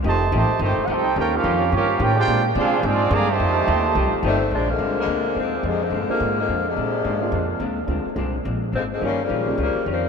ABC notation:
X:1
M:4/4
L:1/16
Q:"Swing" 1/4=214
K:Fmix
V:1 name="Trumpet section"
[Gcea]4 [Gcea]4 [A,EGc]3 _g [EAc=g]4 | [FB_dg]2 [_DGBf]6 [DGBf]4 [FBdg]2 [Fc=dg]2- | [Fcdg]2 z2 [D_Acf]4 [CFAd]4 [Adfb]2 [Gce=a]2- | [Gcea]12 z4 |
[K:Bbmix] z16 | z16 | z16 | z16 |
z16 |]
V:2 name="Grand piano"
z16 | z16 | z16 | z16 |
[K:Bbmix] z16 | z6 [A,B,CDF]6 z4 | z6 [A,B,CDF]6 z4 | [A,B,CDF]2 z2 [A,B,CDF]2 z8 z2 |
[G,B,_DEF]2 z4 [G,B,DEF]2 z8 |]
V:3 name="Hollow-body jazz guitar"
[F,A,EG]2 z2 [F,A,EG]2 z2 [F,A,EG]2 z2 [F,A,EG]2 z2 | [E,_DFG]2 z2 [E,DFG]2 z2 [E,DFG]2 z2 [E,DFG]2 z2 | [B,,_A,CD]2 z2 [B,,A,CD]2 z2 [B,,A,CD]2 z2 [B,,A,CD]2 z2 | [F,A,EG]2 z2 [F,A,EG]2 z2 [F,A,EG]2 z2 [F,A,EG]2 z2 |
[K:Bbmix] [B,,A,CD]2 z2 [B,,A,CD]2 z2 [B,,A,CD]2 z2 [B,,A,CD]2 z2 | [B,,A,CD]2 z2 [B,,A,CD]2 z2 [B,,A,CD]2 z2 [B,,A,CD]2 z2 | [B,,A,CD]2 z2 [B,,A,CD]2 z2 [B,,A,CD]2 z2 [B,,A,CD]2 z2 | [B,,A,CD]2 z2 [B,,A,CD]2 z2 [B,,A,CD]2 z2 [B,,A,CD]2 z2 |
[E,G,_DF]2 z2 [E,G,DF]2 z2 [E,G,DF]2 z2 [E,G,DF]2 z2 |]
V:4 name="Trombone section"
[C,E,A,]4 [C,E,A,]4 [E,A,C]3 z [CEG]4 | [B,_DG]2 [B,DF]6 [B,DF]4 [B,DG]2 [_A,=DG]2- | [_A,DG]2 z2 [A,DF]4 [F,A,D]4 [D,F,B,]2 [C,E,=A,]2- | [C,E,A,]12 z4 |
[K:Bbmix] z16 | z16 | z16 | z16 |
z16 |]
V:5 name="Saxophone section" clef=bass
z16 | z16 | z16 | z12 [E,G,A,C]4 |
[K:Bbmix] [F,A,CD]2 [D,F,A,B,]4 [D,F,A,B,]6 [D,F,A,C]4 | [C,D,F,A,]2 [D,F,A,C]4 [D,F,A,B,]4 [D,F,A,B,]4 [C,D,F,A,]2- | [C,D,F,A,]8- [C,D,F,A,]2 z6 | z12 [D,F,A,C]2 [D,F,A,C]2 |
[F,G,B,_D]2 [_D,F,G,B,]6 [D,F,G,B,]4 [F,G,B,C]4 |]
V:6 name="Upright bass" clef=bass
F,,,4 A,,,2 z2 G,,,2 z2 C,,4 | E,,4 F,,4 G,,4 A,,4 | B,,4 C,4 _A,,4 G,,4 | F,,4 E,,4 C,,2 z2 G,,,4 |
[K:Bbmix] B,,,4 C,,4 D,,4 E,,4 | F,,4 G,,2 z2 A,,4 F,,4 | B,,4 A,,4 F,,4 E,,4 | D,,2 z2 C,,4 B,,,4 A,,,4 |
G,,,4 B,,,4 _D,,2 z2 F,,4 |]